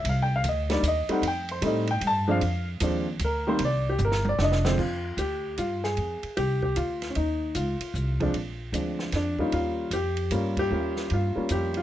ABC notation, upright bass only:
X:1
M:3/4
L:1/8
Q:"Swing" 1/4=152
K:Fdor
V:1 name="Upright bass" clef=bass
C,,2 D,,2 E,, z | F,,2 =A,,2 G,,2 | F,,2 E,,2 D,,2 | C,,2 G,,,2 F,,,2 |
F,,2 D,,2 G,,2 | F,, z C,,2 D,,2 | E,,2 _D,, z C,,2 | B,,,2 D,,2 F,,2 |
E,,2 F,,2 G,,2 | E,,2 G,, z F,,2 |]